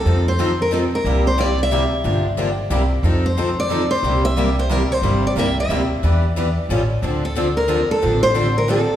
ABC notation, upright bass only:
X:1
M:3/4
L:1/8
Q:"Swing" 1/4=181
K:Cmix
V:1 name="Upright bass" clef=bass
F,,6 | C,,6 | G,,,4 C,,2 | F,,6 |
C,,6 | G,,,2 C,,2 D,,2 | E,,4 A,,,2 | D,,6 |
A,,,6 |]